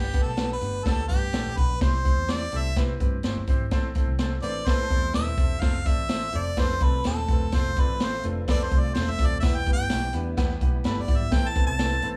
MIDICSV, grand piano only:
0, 0, Header, 1, 2, 480
1, 0, Start_track
1, 0, Tempo, 475436
1, 1834, Time_signature, 4, 2, 24, 8
1, 12284, End_track
2, 0, Start_track
2, 0, Title_t, "Grand piano"
2, 0, Program_c, 0, 0
2, 0, Note_on_c, 0, 43, 58
2, 138, Note_on_c, 0, 59, 74
2, 138, Note_on_c, 0, 62, 64
2, 141, Note_on_c, 0, 67, 66
2, 143, Note_on_c, 0, 71, 80
2, 289, Note_off_c, 0, 59, 0
2, 290, Note_off_c, 0, 62, 0
2, 291, Note_off_c, 0, 67, 0
2, 292, Note_off_c, 0, 71, 0
2, 374, Note_on_c, 0, 59, 76
2, 379, Note_on_c, 0, 62, 61
2, 381, Note_on_c, 0, 67, 67
2, 383, Note_on_c, 0, 71, 82
2, 528, Note_off_c, 0, 59, 0
2, 531, Note_off_c, 0, 62, 0
2, 532, Note_off_c, 0, 67, 0
2, 533, Note_off_c, 0, 71, 0
2, 585, Note_off_c, 0, 43, 0
2, 618, Note_on_c, 0, 59, 62
2, 619, Note_on_c, 0, 67, 57
2, 623, Note_on_c, 0, 62, 65
2, 624, Note_on_c, 0, 71, 68
2, 770, Note_off_c, 0, 59, 0
2, 771, Note_off_c, 0, 67, 0
2, 773, Note_off_c, 0, 62, 0
2, 774, Note_off_c, 0, 71, 0
2, 860, Note_on_c, 0, 59, 92
2, 864, Note_on_c, 0, 67, 93
2, 865, Note_on_c, 0, 62, 85
2, 869, Note_on_c, 0, 69, 114
2, 1012, Note_off_c, 0, 59, 0
2, 1014, Note_off_c, 0, 67, 0
2, 1015, Note_off_c, 0, 62, 0
2, 1017, Note_off_c, 0, 69, 0
2, 1096, Note_on_c, 0, 59, 63
2, 1096, Note_on_c, 0, 62, 60
2, 1102, Note_on_c, 0, 67, 62
2, 1106, Note_on_c, 0, 71, 68
2, 1250, Note_off_c, 0, 59, 0
2, 1250, Note_off_c, 0, 62, 0
2, 1254, Note_off_c, 0, 67, 0
2, 1255, Note_off_c, 0, 71, 0
2, 1340, Note_on_c, 0, 59, 65
2, 1347, Note_on_c, 0, 62, 62
2, 1350, Note_on_c, 0, 67, 70
2, 1355, Note_on_c, 0, 69, 84
2, 1493, Note_off_c, 0, 59, 0
2, 1496, Note_off_c, 0, 62, 0
2, 1498, Note_off_c, 0, 67, 0
2, 1500, Note_off_c, 0, 69, 0
2, 1584, Note_on_c, 0, 59, 76
2, 1589, Note_on_c, 0, 62, 63
2, 1592, Note_on_c, 0, 67, 59
2, 1600, Note_on_c, 0, 71, 76
2, 1735, Note_off_c, 0, 59, 0
2, 1738, Note_off_c, 0, 62, 0
2, 1739, Note_off_c, 0, 67, 0
2, 1743, Note_off_c, 0, 71, 0
2, 1823, Note_on_c, 0, 48, 63
2, 1824, Note_on_c, 0, 64, 81
2, 1825, Note_on_c, 0, 60, 85
2, 1830, Note_on_c, 0, 67, 91
2, 1835, Note_on_c, 0, 72, 108
2, 1975, Note_off_c, 0, 64, 0
2, 1976, Note_off_c, 0, 60, 0
2, 1978, Note_off_c, 0, 67, 0
2, 1981, Note_off_c, 0, 72, 0
2, 2058, Note_on_c, 0, 60, 71
2, 2062, Note_on_c, 0, 64, 66
2, 2063, Note_on_c, 0, 67, 64
2, 2067, Note_on_c, 0, 72, 82
2, 2213, Note_off_c, 0, 60, 0
2, 2215, Note_off_c, 0, 64, 0
2, 2215, Note_off_c, 0, 67, 0
2, 2217, Note_off_c, 0, 72, 0
2, 2302, Note_on_c, 0, 60, 75
2, 2306, Note_on_c, 0, 64, 67
2, 2307, Note_on_c, 0, 67, 66
2, 2311, Note_on_c, 0, 72, 82
2, 2455, Note_off_c, 0, 60, 0
2, 2457, Note_off_c, 0, 64, 0
2, 2458, Note_off_c, 0, 67, 0
2, 2460, Note_off_c, 0, 72, 0
2, 2511, Note_off_c, 0, 48, 0
2, 2543, Note_on_c, 0, 60, 74
2, 2544, Note_on_c, 0, 64, 69
2, 2548, Note_on_c, 0, 67, 65
2, 2552, Note_on_c, 0, 69, 74
2, 2696, Note_off_c, 0, 60, 0
2, 2697, Note_off_c, 0, 64, 0
2, 2699, Note_off_c, 0, 67, 0
2, 2700, Note_off_c, 0, 69, 0
2, 2791, Note_on_c, 0, 60, 101
2, 2791, Note_on_c, 0, 64, 97
2, 2795, Note_on_c, 0, 67, 89
2, 2802, Note_on_c, 0, 71, 112
2, 2940, Note_off_c, 0, 60, 0
2, 2940, Note_off_c, 0, 64, 0
2, 2942, Note_off_c, 0, 67, 0
2, 2946, Note_off_c, 0, 71, 0
2, 3028, Note_on_c, 0, 64, 70
2, 3029, Note_on_c, 0, 60, 82
2, 3035, Note_on_c, 0, 67, 71
2, 3036, Note_on_c, 0, 71, 81
2, 3179, Note_off_c, 0, 60, 0
2, 3179, Note_off_c, 0, 64, 0
2, 3182, Note_off_c, 0, 67, 0
2, 3183, Note_off_c, 0, 71, 0
2, 3272, Note_on_c, 0, 60, 82
2, 3273, Note_on_c, 0, 64, 83
2, 3277, Note_on_c, 0, 67, 70
2, 3282, Note_on_c, 0, 72, 86
2, 3421, Note_off_c, 0, 60, 0
2, 3422, Note_off_c, 0, 64, 0
2, 3423, Note_off_c, 0, 67, 0
2, 3426, Note_off_c, 0, 72, 0
2, 3518, Note_on_c, 0, 60, 86
2, 3520, Note_on_c, 0, 64, 81
2, 3524, Note_on_c, 0, 67, 73
2, 3526, Note_on_c, 0, 72, 90
2, 3664, Note_off_c, 0, 60, 0
2, 3665, Note_off_c, 0, 64, 0
2, 3667, Note_off_c, 0, 67, 0
2, 3668, Note_off_c, 0, 72, 0
2, 3750, Note_on_c, 0, 60, 114
2, 3755, Note_on_c, 0, 64, 91
2, 3760, Note_on_c, 0, 45, 81
2, 3760, Note_on_c, 0, 69, 105
2, 3760, Note_on_c, 0, 72, 127
2, 3901, Note_off_c, 0, 60, 0
2, 3903, Note_off_c, 0, 64, 0
2, 3905, Note_off_c, 0, 69, 0
2, 3906, Note_off_c, 0, 72, 0
2, 3984, Note_on_c, 0, 60, 93
2, 3994, Note_on_c, 0, 69, 74
2, 3995, Note_on_c, 0, 64, 81
2, 3998, Note_on_c, 0, 72, 95
2, 4138, Note_off_c, 0, 60, 0
2, 4143, Note_off_c, 0, 64, 0
2, 4143, Note_off_c, 0, 69, 0
2, 4145, Note_off_c, 0, 72, 0
2, 4227, Note_on_c, 0, 60, 86
2, 4231, Note_on_c, 0, 64, 75
2, 4236, Note_on_c, 0, 72, 99
2, 4239, Note_on_c, 0, 69, 81
2, 4379, Note_off_c, 0, 60, 0
2, 4381, Note_off_c, 0, 64, 0
2, 4384, Note_off_c, 0, 72, 0
2, 4385, Note_off_c, 0, 69, 0
2, 4440, Note_off_c, 0, 45, 0
2, 4469, Note_on_c, 0, 60, 75
2, 4470, Note_on_c, 0, 69, 62
2, 4471, Note_on_c, 0, 64, 64
2, 4474, Note_on_c, 0, 72, 84
2, 4620, Note_off_c, 0, 60, 0
2, 4621, Note_off_c, 0, 64, 0
2, 4621, Note_off_c, 0, 69, 0
2, 4623, Note_off_c, 0, 72, 0
2, 4714, Note_on_c, 0, 60, 95
2, 4717, Note_on_c, 0, 69, 84
2, 4718, Note_on_c, 0, 64, 88
2, 4721, Note_on_c, 0, 71, 112
2, 4863, Note_off_c, 0, 60, 0
2, 4865, Note_off_c, 0, 64, 0
2, 4865, Note_off_c, 0, 69, 0
2, 4866, Note_off_c, 0, 71, 0
2, 4947, Note_on_c, 0, 60, 73
2, 4955, Note_on_c, 0, 64, 58
2, 4959, Note_on_c, 0, 69, 62
2, 4959, Note_on_c, 0, 74, 74
2, 5100, Note_off_c, 0, 60, 0
2, 5104, Note_off_c, 0, 64, 0
2, 5106, Note_off_c, 0, 69, 0
2, 5106, Note_off_c, 0, 74, 0
2, 5191, Note_on_c, 0, 60, 78
2, 5193, Note_on_c, 0, 64, 63
2, 5197, Note_on_c, 0, 69, 72
2, 5198, Note_on_c, 0, 71, 73
2, 5342, Note_off_c, 0, 60, 0
2, 5343, Note_off_c, 0, 64, 0
2, 5345, Note_off_c, 0, 69, 0
2, 5345, Note_off_c, 0, 71, 0
2, 5429, Note_on_c, 0, 60, 72
2, 5432, Note_on_c, 0, 64, 68
2, 5440, Note_on_c, 0, 69, 71
2, 5440, Note_on_c, 0, 72, 72
2, 5581, Note_off_c, 0, 60, 0
2, 5582, Note_off_c, 0, 64, 0
2, 5586, Note_off_c, 0, 69, 0
2, 5586, Note_off_c, 0, 72, 0
2, 5668, Note_on_c, 0, 60, 90
2, 5672, Note_on_c, 0, 65, 75
2, 5672, Note_on_c, 0, 72, 97
2, 5674, Note_on_c, 0, 69, 81
2, 5820, Note_off_c, 0, 60, 0
2, 5822, Note_off_c, 0, 65, 0
2, 5822, Note_off_c, 0, 72, 0
2, 5824, Note_off_c, 0, 69, 0
2, 5908, Note_on_c, 0, 65, 69
2, 5910, Note_on_c, 0, 60, 81
2, 5916, Note_on_c, 0, 69, 63
2, 5919, Note_on_c, 0, 74, 78
2, 6060, Note_off_c, 0, 65, 0
2, 6061, Note_off_c, 0, 60, 0
2, 6064, Note_off_c, 0, 69, 0
2, 6066, Note_off_c, 0, 74, 0
2, 6143, Note_on_c, 0, 65, 67
2, 6144, Note_on_c, 0, 60, 77
2, 6148, Note_on_c, 0, 72, 76
2, 6153, Note_on_c, 0, 69, 64
2, 6298, Note_off_c, 0, 60, 0
2, 6298, Note_off_c, 0, 65, 0
2, 6301, Note_off_c, 0, 72, 0
2, 6303, Note_off_c, 0, 69, 0
2, 6382, Note_on_c, 0, 60, 67
2, 6383, Note_on_c, 0, 65, 60
2, 6389, Note_on_c, 0, 69, 71
2, 6389, Note_on_c, 0, 72, 79
2, 6537, Note_off_c, 0, 60, 0
2, 6538, Note_off_c, 0, 65, 0
2, 6541, Note_off_c, 0, 69, 0
2, 6541, Note_off_c, 0, 72, 0
2, 6633, Note_on_c, 0, 60, 97
2, 6633, Note_on_c, 0, 65, 95
2, 6640, Note_on_c, 0, 71, 107
2, 6641, Note_on_c, 0, 69, 92
2, 6783, Note_off_c, 0, 60, 0
2, 6783, Note_off_c, 0, 65, 0
2, 6786, Note_off_c, 0, 71, 0
2, 6787, Note_off_c, 0, 69, 0
2, 6878, Note_on_c, 0, 65, 62
2, 6880, Note_on_c, 0, 60, 62
2, 6884, Note_on_c, 0, 74, 68
2, 6885, Note_on_c, 0, 69, 66
2, 7025, Note_off_c, 0, 65, 0
2, 7026, Note_off_c, 0, 60, 0
2, 7028, Note_off_c, 0, 74, 0
2, 7029, Note_off_c, 0, 69, 0
2, 7123, Note_on_c, 0, 60, 67
2, 7127, Note_on_c, 0, 65, 63
2, 7129, Note_on_c, 0, 69, 63
2, 7135, Note_on_c, 0, 72, 80
2, 7268, Note_off_c, 0, 60, 0
2, 7270, Note_off_c, 0, 65, 0
2, 7271, Note_off_c, 0, 69, 0
2, 7274, Note_off_c, 0, 72, 0
2, 7369, Note_on_c, 0, 60, 73
2, 7370, Note_on_c, 0, 65, 65
2, 7377, Note_on_c, 0, 69, 70
2, 7380, Note_on_c, 0, 71, 79
2, 7510, Note_off_c, 0, 60, 0
2, 7511, Note_off_c, 0, 65, 0
2, 7514, Note_off_c, 0, 69, 0
2, 7516, Note_off_c, 0, 71, 0
2, 7600, Note_on_c, 0, 60, 86
2, 7604, Note_on_c, 0, 65, 81
2, 7609, Note_on_c, 0, 69, 81
2, 7611, Note_on_c, 0, 72, 97
2, 7746, Note_off_c, 0, 60, 0
2, 7748, Note_off_c, 0, 65, 0
2, 7750, Note_off_c, 0, 69, 0
2, 7752, Note_off_c, 0, 72, 0
2, 7849, Note_on_c, 0, 60, 73
2, 7853, Note_on_c, 0, 65, 72
2, 7854, Note_on_c, 0, 69, 69
2, 7856, Note_on_c, 0, 74, 82
2, 7991, Note_off_c, 0, 60, 0
2, 7992, Note_off_c, 0, 65, 0
2, 7993, Note_off_c, 0, 69, 0
2, 7994, Note_off_c, 0, 74, 0
2, 8085, Note_on_c, 0, 60, 73
2, 8086, Note_on_c, 0, 65, 64
2, 8089, Note_on_c, 0, 69, 61
2, 8092, Note_on_c, 0, 72, 90
2, 8228, Note_off_c, 0, 60, 0
2, 8229, Note_off_c, 0, 65, 0
2, 8230, Note_off_c, 0, 69, 0
2, 8232, Note_off_c, 0, 72, 0
2, 8320, Note_on_c, 0, 60, 69
2, 8324, Note_on_c, 0, 65, 65
2, 8325, Note_on_c, 0, 69, 66
2, 8330, Note_on_c, 0, 72, 78
2, 8465, Note_off_c, 0, 60, 0
2, 8467, Note_off_c, 0, 65, 0
2, 8468, Note_off_c, 0, 69, 0
2, 8470, Note_off_c, 0, 72, 0
2, 8556, Note_on_c, 0, 60, 95
2, 8559, Note_on_c, 0, 65, 88
2, 8564, Note_on_c, 0, 69, 92
2, 8570, Note_on_c, 0, 71, 118
2, 8703, Note_off_c, 0, 60, 0
2, 8705, Note_off_c, 0, 65, 0
2, 8707, Note_off_c, 0, 69, 0
2, 8710, Note_off_c, 0, 71, 0
2, 8801, Note_on_c, 0, 60, 61
2, 8805, Note_on_c, 0, 65, 62
2, 8808, Note_on_c, 0, 69, 56
2, 8810, Note_on_c, 0, 72, 65
2, 8946, Note_off_c, 0, 60, 0
2, 8947, Note_off_c, 0, 65, 0
2, 8949, Note_off_c, 0, 69, 0
2, 8950, Note_off_c, 0, 72, 0
2, 9048, Note_on_c, 0, 60, 74
2, 9050, Note_on_c, 0, 69, 66
2, 9051, Note_on_c, 0, 65, 63
2, 9053, Note_on_c, 0, 72, 86
2, 9189, Note_off_c, 0, 60, 0
2, 9190, Note_off_c, 0, 65, 0
2, 9190, Note_off_c, 0, 69, 0
2, 9191, Note_off_c, 0, 72, 0
2, 9282, Note_on_c, 0, 60, 68
2, 9289, Note_on_c, 0, 65, 68
2, 9290, Note_on_c, 0, 69, 69
2, 9293, Note_on_c, 0, 74, 77
2, 9426, Note_off_c, 0, 60, 0
2, 9429, Note_off_c, 0, 65, 0
2, 9430, Note_off_c, 0, 69, 0
2, 9431, Note_off_c, 0, 74, 0
2, 9519, Note_on_c, 0, 64, 89
2, 9521, Note_on_c, 0, 59, 97
2, 9522, Note_on_c, 0, 67, 80
2, 9523, Note_on_c, 0, 52, 66
2, 9524, Note_on_c, 0, 71, 102
2, 9664, Note_off_c, 0, 64, 0
2, 9665, Note_off_c, 0, 59, 0
2, 9665, Note_off_c, 0, 67, 0
2, 9666, Note_off_c, 0, 71, 0
2, 9760, Note_on_c, 0, 59, 77
2, 9765, Note_on_c, 0, 67, 69
2, 9767, Note_on_c, 0, 64, 62
2, 9772, Note_on_c, 0, 71, 78
2, 9904, Note_off_c, 0, 59, 0
2, 9906, Note_off_c, 0, 67, 0
2, 9907, Note_off_c, 0, 64, 0
2, 9910, Note_off_c, 0, 71, 0
2, 10000, Note_on_c, 0, 64, 72
2, 10002, Note_on_c, 0, 59, 74
2, 10007, Note_on_c, 0, 67, 70
2, 10011, Note_on_c, 0, 71, 79
2, 10144, Note_off_c, 0, 64, 0
2, 10145, Note_off_c, 0, 59, 0
2, 10147, Note_off_c, 0, 67, 0
2, 10149, Note_off_c, 0, 71, 0
2, 10198, Note_off_c, 0, 52, 0
2, 10236, Note_on_c, 0, 64, 70
2, 10240, Note_on_c, 0, 59, 68
2, 10242, Note_on_c, 0, 67, 68
2, 10247, Note_on_c, 0, 71, 85
2, 10381, Note_off_c, 0, 64, 0
2, 10383, Note_off_c, 0, 59, 0
2, 10384, Note_off_c, 0, 67, 0
2, 10387, Note_off_c, 0, 71, 0
2, 10471, Note_on_c, 0, 59, 125
2, 10473, Note_on_c, 0, 64, 107
2, 10476, Note_on_c, 0, 67, 102
2, 10479, Note_on_c, 0, 71, 127
2, 10618, Note_off_c, 0, 59, 0
2, 10619, Note_off_c, 0, 64, 0
2, 10621, Note_off_c, 0, 67, 0
2, 10622, Note_off_c, 0, 71, 0
2, 10719, Note_on_c, 0, 59, 82
2, 10721, Note_on_c, 0, 64, 75
2, 10721, Note_on_c, 0, 67, 78
2, 10725, Note_on_c, 0, 71, 95
2, 10862, Note_off_c, 0, 59, 0
2, 10863, Note_off_c, 0, 64, 0
2, 10863, Note_off_c, 0, 67, 0
2, 10865, Note_off_c, 0, 71, 0
2, 10956, Note_on_c, 0, 59, 72
2, 10957, Note_on_c, 0, 64, 69
2, 10964, Note_on_c, 0, 67, 69
2, 10966, Note_on_c, 0, 69, 82
2, 11100, Note_off_c, 0, 59, 0
2, 11100, Note_off_c, 0, 64, 0
2, 11104, Note_off_c, 0, 67, 0
2, 11105, Note_off_c, 0, 69, 0
2, 11182, Note_on_c, 0, 59, 76
2, 11186, Note_on_c, 0, 64, 69
2, 11187, Note_on_c, 0, 67, 69
2, 11194, Note_on_c, 0, 74, 83
2, 11333, Note_off_c, 0, 59, 0
2, 11335, Note_off_c, 0, 64, 0
2, 11335, Note_off_c, 0, 67, 0
2, 11338, Note_off_c, 0, 74, 0
2, 11423, Note_on_c, 0, 45, 68
2, 11423, Note_on_c, 0, 60, 91
2, 11425, Note_on_c, 0, 64, 88
2, 11425, Note_on_c, 0, 69, 90
2, 11434, Note_on_c, 0, 71, 95
2, 11572, Note_off_c, 0, 60, 0
2, 11573, Note_off_c, 0, 69, 0
2, 11574, Note_off_c, 0, 64, 0
2, 11578, Note_off_c, 0, 71, 0
2, 11659, Note_on_c, 0, 60, 73
2, 11664, Note_on_c, 0, 69, 78
2, 11665, Note_on_c, 0, 64, 78
2, 11671, Note_on_c, 0, 71, 86
2, 11810, Note_off_c, 0, 60, 0
2, 11812, Note_off_c, 0, 69, 0
2, 11813, Note_off_c, 0, 64, 0
2, 11816, Note_off_c, 0, 71, 0
2, 11902, Note_on_c, 0, 60, 76
2, 11904, Note_on_c, 0, 64, 77
2, 11910, Note_on_c, 0, 69, 78
2, 11912, Note_on_c, 0, 71, 77
2, 12051, Note_off_c, 0, 60, 0
2, 12052, Note_off_c, 0, 64, 0
2, 12055, Note_off_c, 0, 69, 0
2, 12056, Note_off_c, 0, 71, 0
2, 12104, Note_off_c, 0, 45, 0
2, 12141, Note_on_c, 0, 60, 75
2, 12146, Note_on_c, 0, 64, 66
2, 12153, Note_on_c, 0, 69, 67
2, 12153, Note_on_c, 0, 71, 82
2, 12284, Note_off_c, 0, 60, 0
2, 12284, Note_off_c, 0, 64, 0
2, 12284, Note_off_c, 0, 69, 0
2, 12284, Note_off_c, 0, 71, 0
2, 12284, End_track
0, 0, End_of_file